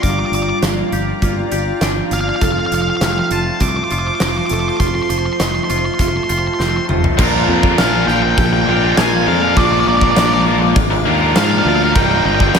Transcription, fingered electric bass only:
0.03 0.22 G1 medium
0.31 0.50 G1 medium
0.62 0.81 G1 medium
0.92 1.11 G1 medium
1.22 1.41 G1 medium
1.52 1.70 G1 medium
1.81 2.00 G1 medium
2.11 2.30 G1 medium
2.42 2.60 F1 medium
2.71 2.90 F1 medium
3.01 3.19 F1 medium
3.31 3.49 F1 medium
3.60 3.79 C2 medium
3.91 4.09 F1 medium
4.20 4.39 F1 medium
4.51 4.69 F1 medium
4.80 4.98 F1 medium
5.09 5.28 F1 medium
5.40 5.58 F1 medium
5.70 5.88 F1 medium
5.99 6.18 F1 medium
6.30 6.48 F1 medium
6.59 6.78 F1 medium
6.89 7.08 F1 medium
7.19 7.45 A#1 loud
7.48 7.75 F2 medium
7.79 8.05 A#1 medium
8.08 8.35 A#1 medium
8.37 8.64 A#1 medium
8.67 8.94 A#1 medium
8.98 9.24 A#1 loud
9.27 9.54 F2 medium
9.56 9.83 A#1 medium
9.87 10.14 A#1 medium
10.17 10.72 A#1 loud
10.76 11.03 G#1 loud
11.05 11.32 D#2 medium
11.36 11.63 G#2 medium
11.65 11.92 D2 loud
11.96 12.22 C1 loud
12.25 12.52 G1 loud
12.55 12.59 C1 loud

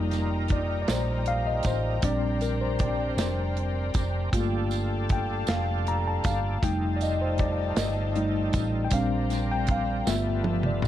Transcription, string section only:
0.00 2.00 D#4 medium
0.00 1.98 D5 medium
0.00 6.58 G5 medium
0.00 4.28 A#5 medium
2.04 4.31 C5 medium
2.04 4.31 D5 medium
4.31 6.60 A4 medium
4.31 8.87 F5 medium
4.31 6.59 A5 medium
6.62 8.90 D#4 medium
6.62 8.89 G5 medium
6.62 8.89 A5 medium
8.89 10.05 C5 medium
8.89 10.04 D5 medium
8.89 10.88 G5 medium
8.89 10.05 A#5 medium
10.07 10.88 F4 medium
10.07 10.88 B4 medium
10.07 10.88 A5 medium

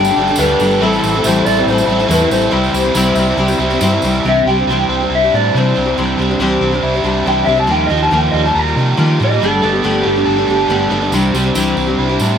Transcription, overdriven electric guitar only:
0.00 0.22 G3 medium
0.00 0.18 A3 medium
0.00 0.17 D4 medium
0.00 0.16 G4 medium
0.16 0.38 A3 medium
0.16 0.38 D4 medium
0.16 0.40 G4 medium
0.38 0.81 G3 loud
0.38 0.80 A3 loud
0.38 0.81 D4 loud
0.38 0.82 G4 loud
0.80 1.24 A2 loud
0.80 1.22 E3 medium
0.80 1.04 A3 loud
0.80 1.04 C4 loud
0.80 1.02 E4 loud
1.03 1.21 A3 medium
1.03 1.23 C4 medium
1.03 1.24 E4 medium
1.22 2.07 E3 medium
1.22 1.45 A3 medium
1.22 1.45 C4 medium
1.22 1.44 E4 medium
1.45 1.88 A3 medium
1.45 1.87 C4 medium
1.45 1.86 E4 medium
1.86 2.06 A3 medium
1.86 2.08 C4 medium
1.86 2.09 E4 medium
2.06 2.50 A2 medium
2.06 2.50 E3 loud
2.06 2.51 A3 loud
2.06 2.52 C4 loud
2.06 2.52 E4 loud
2.50 2.95 C3 loud
2.50 2.92 E3 loud
2.50 2.74 G3 loud
2.50 2.73 C4 loud
2.50 2.71 E4 loud
2.73 2.92 G3 medium
2.73 2.94 C4 medium
2.73 2.94 E4 medium
2.93 3.38 E3 medium
2.93 3.17 G3 medium
2.93 3.15 C4 medium
2.93 3.14 E4 medium
3.15 3.60 G3 medium
3.15 3.58 C4 medium
3.15 3.57 E4 medium
3.58 3.80 G3 medium
3.58 3.81 C4 medium
3.58 3.81 E4 medium
3.80 4.23 C3 medium
3.80 4.23 E3 loud
3.80 4.24 G3 medium
3.80 4.24 C4 loud
3.80 4.24 E4 loud
4.24 5.33 C3 medium
4.47 4.67 G3 medium
4.67 5.54 G3 medium
4.89 5.74 C4 medium
5.10 6.19 E4 medium
5.31 6.40 D4 medium
5.55 6.17 G3 medium
5.75 6.60 C4 medium
5.96 7.05 C3 medium
6.17 6.38 G3 medium
6.39 7.25 G3 medium
6.61 7.47 C4 medium
6.83 7.70 E4 medium
7.04 7.70 D4 medium
7.26 7.90 G3 medium
7.48 7.70 C4 medium
7.69 8.77 D#3 medium
7.90 8.11 F3 medium
8.12 8.96 F3 medium
8.34 9.19 G3 medium
8.55 9.42 A#4 medium
8.77 9.42 D#4 medium
8.97 9.40 F3 medium
9.19 9.40 G3 medium
9.40 9.83 G3 medium
9.63 10.02 B3 medium
9.83 10.68 G3 medium
10.03 10.89 B3 medium
10.25 11.12 A4 medium
10.47 11.15 D4 medium
10.68 11.34 G3 medium
10.90 11.13 B3 medium
11.12 12.20 C3 medium
11.34 11.55 G3 medium
11.55 12.38 G3 medium
11.77 12.38 C4 medium
11.98 12.38 E4 medium
12.21 12.38 D4 medium

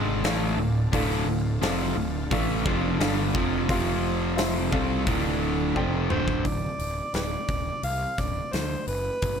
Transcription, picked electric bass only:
0.00 0.22 G#1 medium
0.23 0.56 A1 medium
0.58 0.90 D1 medium
0.93 1.25 D1 medium
1.26 1.59 D1 medium
1.62 1.94 F1 medium
1.95 2.28 D1 medium
2.31 2.63 A1 loud
2.66 2.98 F1 loud
2.99 3.32 G1 medium
3.35 3.67 F1 loud
3.69 4.69 F1 medium
4.73 5.05 C2 medium
5.07 5.72 D1 loud
5.76 6.08 F1 medium
6.10 6.43 D1 medium
6.45 6.66 D1 medium
6.79 7.00 D1 medium
7.14 7.35 D1 medium
7.49 7.70 D1 medium
7.83 8.05 C2 medium
8.18 8.40 D1 medium
8.54 8.75 D2 medium
8.88 9.09 F#1 medium
9.22 9.40 G1 medium

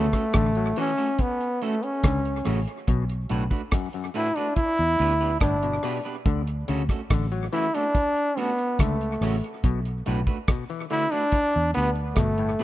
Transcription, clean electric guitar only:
0.13 0.24 A3 soft
0.13 0.24 C#4 medium
0.13 0.24 F#4 medium
0.13 0.23 A4 medium
0.77 0.90 A3 medium
0.77 0.90 C#4 loud
0.77 0.90 F#4 medium
0.77 0.90 A4 loud
0.98 1.08 A3 soft
0.98 1.08 C#4 medium
0.98 1.08 F#4 medium
0.98 1.07 A4 medium
1.62 1.74 A3 medium
1.62 1.74 C#4 medium
1.62 1.74 F#4 medium
1.62 1.75 A4 medium
2.45 2.58 A3 medium
2.45 2.58 C#4 medium
2.45 2.59 F#4 medium
2.45 2.59 A4 medium
3.30 3.42 A3 medium
3.30 3.43 D4 medium
3.30 3.43 F#4 medium
3.30 3.43 B4 medium
3.51 3.61 A3 medium
3.51 3.61 D4 medium
3.51 3.61 F#4 medium
3.51 3.61 B4 medium
4.14 4.27 A3 medium
4.14 4.27 D4 medium
4.14 4.27 F#4 medium
4.14 4.28 B4 loud
4.37 4.47 A3 medium
4.37 4.47 D4 medium
4.37 4.46 F#4 medium
4.37 4.46 B4 medium
5.00 5.12 B3 medium
5.00 5.12 D4 medium
5.00 5.12 G4 medium
5.00 5.13 B4 medium
5.21 5.31 B3 medium
5.21 5.31 D4 medium
5.21 5.30 G4 medium
5.21 5.30 B4 medium
5.83 5.96 B3 medium
5.83 5.96 D4 medium
5.83 5.97 G4 medium
5.83 5.97 B4 loud
6.05 6.15 B3 soft
6.05 6.15 D4 soft
6.05 6.15 G4 medium
6.05 6.15 B4 medium
6.69 6.81 A3 medium
6.69 6.81 C#4 medium
6.69 6.81 F#4 medium
6.69 6.82 A4 medium
6.91 7.01 A3 medium
6.91 7.00 C#4 medium
6.91 7.00 F#4 medium
6.91 7.00 A4 medium
7.53 7.65 A3 medium
7.53 7.66 C#4 medium
7.53 7.66 F#4 medium
7.53 7.66 A4 medium
7.74 7.85 A3 soft
7.74 7.84 C#4 medium
7.74 7.84 F#4 medium
7.74 7.84 A4 medium
8.37 8.50 A3 medium
8.37 8.50 C#4 medium
8.37 8.50 F#4 medium
8.37 8.50 A4 medium
9.22 9.34 A3 medium
9.22 9.35 C#4 medium
9.22 9.35 F#4 medium
9.22 9.35 A4 medium
10.06 10.19 A3 medium
10.06 10.19 D4 medium
10.06 10.19 F#4 medium
10.06 10.20 B4 medium
10.27 10.37 A3 medium
10.27 10.37 D4 medium
10.27 10.37 F#4 medium
10.27 10.37 B4 medium
10.90 11.03 A3 medium
10.90 11.03 D4 medium
10.90 11.04 F#4 medium
10.90 11.04 B4 medium
11.12 11.22 A3 soft
11.12 11.22 D4 soft
11.12 11.22 F#4 medium
11.12 11.22 B4 medium
11.75 11.88 B3 medium
11.75 11.88 D4 medium
11.75 11.88 G4 medium
11.75 11.88 B4 medium
12.59 12.64 B3 medium
12.59 12.64 D4 medium
12.59 12.64 G4 medium
12.59 12.64 B4 medium

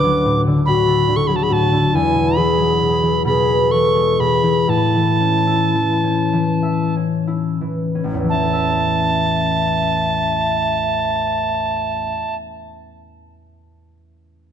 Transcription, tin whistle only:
0.00 0.41 D6 medium
0.66 1.18 B5 medium
1.16 1.29 C#6 medium
1.27 1.38 B5 medium
1.36 1.45 A5 medium
1.43 1.54 B5 medium
1.53 1.97 A5 medium
1.95 2.37 G#5 medium
2.36 3.25 B5 medium
3.26 3.73 B5 medium
3.71 4.22 C#6 medium
4.20 4.71 B5 medium
4.69 6.95 A5 medium
8.29 12.35 A5 medium

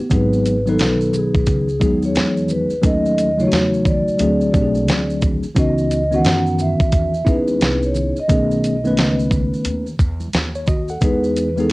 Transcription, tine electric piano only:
0.00 0.10 B3 medium
0.00 0.31 G4 medium
0.09 0.56 F#3 medium
0.09 0.56 G#3 medium
0.09 0.56 B3 medium
0.09 0.57 D#4 medium
0.09 0.57 G#4 medium
0.66 1.66 D#3 medium
0.66 1.66 F#3 medium
0.66 1.67 B3 medium
0.66 1.67 D#4 medium
0.66 1.68 B4 medium
1.80 2.71 F#3 medium
1.80 2.71 G#3 medium
1.80 2.72 B3 medium
1.80 2.72 D#4 medium
1.80 2.73 G#4 medium
2.82 3.28 F#3 medium
2.82 3.29 A3 medium
2.82 3.29 C#4 medium
2.82 3.29 D#4 medium
2.82 3.30 A4 medium
3.38 4.20 C#3 medium
3.38 4.17 F#3 medium
3.38 4.18 A3 medium
3.38 4.20 D#4 medium
3.38 3.45 F4 medium
3.48 4.24 F#4 medium
4.18 4.49 F#3 medium
4.18 4.50 A3 medium
4.18 4.50 C4 medium
4.18 4.50 D4 medium
4.18 4.51 G#4 medium
4.52 5.44 F#3 medium
4.52 5.44 A3 medium
4.52 5.44 C4 medium
4.52 5.45 D4 medium
4.52 4.63 G4 medium
4.62 5.49 G#4 medium
5.55 6.01 E3 medium
5.55 6.01 B3 medium
5.55 6.02 C#4 medium
5.55 6.02 D#4 medium
5.55 6.03 F#4 medium
6.11 6.13 D#3 medium
6.11 7.12 D#3 medium
6.11 7.12 B3 medium
6.11 7.12 C#4 medium
6.11 7.13 F#4 medium
6.17 7.14 E3 medium
7.25 8.17 B3 medium
7.25 8.17 C#4 medium
7.25 8.18 D#4 medium
7.25 8.16 E4 medium
7.25 8.18 G#4 medium
8.28 8.74 D#3 medium
8.28 8.74 A3 medium
8.28 8.75 B3 medium
8.28 8.75 C#4 medium
8.28 8.76 G#4 medium
8.84 9.84 D#3 medium
8.84 9.84 A3 medium
8.84 9.85 B3 medium
8.84 9.85 C#4 medium
8.84 9.86 B4 medium
10.56 10.67 C#5 medium
10.68 10.89 F#4 medium
10.68 10.89 D#5 medium
10.90 11.22 A4 medium
10.90 11.22 F#5 medium
11.01 11.47 E3 medium
11.01 11.47 G#3 medium
11.01 11.48 B3 medium
11.01 11.48 D#4 medium
11.01 11.48 G#4 medium
11.56 11.72 E3 medium
11.56 11.72 G#3 medium
11.56 11.72 B3 medium
11.56 11.72 D#4 medium
11.56 11.72 G#4 medium

